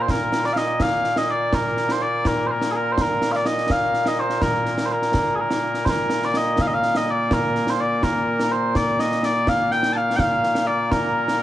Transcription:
Already playing: A#2 A#3
0.01 C5
0.08 A#4, concert bass drum, snare
0.32 snare
0.44 D5, snare
0.53 F5, snare
0.57 D#5
0.80 F5, concert bass drum, snare
1.04 snare
1.16 D#5, snare
1.30 D5
1.53 A#4, concert bass drum, snare
1.77 snare
1.89 C5, snare
2.02 D5
2.25 A#4, concert bass drum, snare
2.47 C5
2.51 A#4
2.62 snare
2.71 G#4
2.76 A#4
2.92 C5
2.98 A#4, concert bass drum, snare
3.22 snare
3.32 F5, snare
3.36 D5
3.46 D#5, snare
3.58 snare
3.70 F5, concert bass drum, snare
3.94 snare
4.06 D#5, snare
4.20 C5
4.30 snare
4.42 A#4, concert bass drum, snare
4.66 snare
4.78 snare
4.86 C5
4.92 A#4
5.02 snare
5.14 concert bass drum, snare
5.35 G#4
5.40 A#4
5.50 snare
5.74 snare
5.85 C5, concert bass drum, snare
5.90 A#4
6.10 snare
6.22 D5, snare
6.34 D#5, snare
6.58 F5, concert bass drum, snare
6.67 D#5
6.74 F5
6.83 snare
6.95 D#5, snare
7.10 D5
7.31 A#4, concert bass drum, snare
7.55 snare
7.67 C5, snare
7.81 D5
8.03 A#4, concert bass drum, snare
8.40 snare
8.52 C5
8.75 D5, concert bass drum, snare
8.99 D#5, snare
9.12 snare
9.23 D5, snare
9.47 F5, concert bass drum, snare
9.71 G5, snare
9.83 snare
9.93 F5 A5
10.16 F5 G5, concert bass drum, snare
10.44 snare
10.55 snare
10.67 D5
10.91 A#4, concert bass drum, snare
11.28 snare

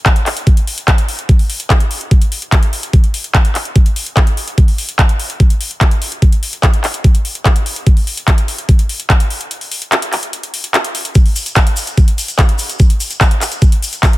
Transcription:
0.06 kick, clap, closed hi-hat
0.16 closed hi-hat
0.26 clap, open hi-hat
0.37 closed hi-hat
0.47 kick, closed hi-hat
0.57 closed hi-hat
0.67 open hi-hat
0.78 closed hi-hat
0.88 kick, clap, closed hi-hat
0.98 closed hi-hat
1.08 open hi-hat
1.19 closed hi-hat
1.29 kick, closed hi-hat
1.39 open hi-hat
1.50 open hi-hat
1.60 closed hi-hat
1.70 kick, clap, closed hi-hat
1.80 closed hi-hat
1.91 open hi-hat
2.01 closed hi-hat
2.11 kick, closed hi-hat
2.22 closed hi-hat
2.32 open hi-hat
2.42 closed hi-hat
2.52 kick, clap, closed hi-hat
2.63 closed hi-hat
2.73 open hi-hat
2.83 closed hi-hat
2.93 kick, closed hi-hat
3.04 closed hi-hat
3.14 open hi-hat
3.24 closed hi-hat
3.35 kick, clap, closed hi-hat
3.45 closed hi-hat
3.55 clap, open hi-hat
3.65 closed hi-hat
3.76 kick, closed hi-hat
3.86 closed hi-hat
3.96 open hi-hat
4.06 closed hi-hat
4.17 kick, clap, closed hi-hat
4.27 closed hi-hat
4.37 open hi-hat
4.48 closed hi-hat
4.58 kick, closed hi-hat
4.68 open hi-hat
4.78 open hi-hat
4.89 closed hi-hat
4.99 kick, clap, closed hi-hat
5.09 closed hi-hat
5.19 open hi-hat
5.30 closed hi-hat
5.40 kick, closed hi-hat
5.50 closed hi-hat
5.61 open hi-hat
5.71 closed hi-hat
5.81 kick, clap, closed hi-hat
5.91 closed hi-hat
6.02 open hi-hat
6.12 closed hi-hat
6.22 kick, closed hi-hat
6.32 closed hi-hat
6.43 open hi-hat
6.53 closed hi-hat
6.63 kick, clap, closed hi-hat
6.74 closed hi-hat
6.84 clap, open hi-hat
6.94 closed hi-hat
7.04 kick, closed hi-hat
7.15 closed hi-hat
7.25 open hi-hat
7.35 closed hi-hat
7.45 kick, clap, closed hi-hat
7.56 closed hi-hat
7.66 open hi-hat
7.76 closed hi-hat
7.87 kick, closed hi-hat
7.97 open hi-hat
8.07 open hi-hat
8.17 closed hi-hat
8.28 kick, clap, closed hi-hat
8.38 closed hi-hat
8.48 open hi-hat
8.58 closed hi-hat
8.69 kick, closed hi-hat
8.79 closed hi-hat
8.89 open hi-hat
9.00 closed hi-hat
9.10 kick, clap, closed hi-hat
9.20 closed hi-hat
9.30 open hi-hat
9.41 closed hi-hat
9.51 closed hi-hat
9.61 open hi-hat
9.72 open hi-hat
9.82 closed hi-hat
9.92 clap, closed hi-hat
10.02 closed hi-hat
10.13 clap, open hi-hat
10.23 closed hi-hat
10.33 closed hi-hat
10.43 closed hi-hat
10.54 open hi-hat
10.64 closed hi-hat
10.74 clap, closed hi-hat
10.85 closed hi-hat
10.95 open hi-hat
11.05 closed hi-hat
11.15 kick, closed hi-hat, shaker
11.26 open hi-hat
11.36 open hi-hat, shaker
11.46 closed hi-hat, shaker
11.55 kick, clap, closed hi-hat, shaker
11.67 closed hi-hat
11.77 open hi-hat, shaker
11.87 closed hi-hat, shaker
11.98 kick, closed hi-hat, shaker
12.08 closed hi-hat
12.18 open hi-hat, shaker
12.28 closed hi-hat, shaker
12.38 kick, clap, closed hi-hat, shaker
12.49 closed hi-hat
12.59 open hi-hat, shaker
12.69 closed hi-hat, shaker
12.79 kick, closed hi-hat, shaker
12.90 closed hi-hat
13.00 open hi-hat, shaker
13.10 closed hi-hat, shaker
13.21 kick, clap, closed hi-hat, shaker
13.31 closed hi-hat
13.41 clap, open hi-hat, shaker
13.52 closed hi-hat, shaker
13.62 kick, closed hi-hat, shaker
13.72 closed hi-hat
13.82 open hi-hat, shaker
13.93 closed hi-hat, shaker
14.03 kick, clap, closed hi-hat, shaker
14.13 closed hi-hat

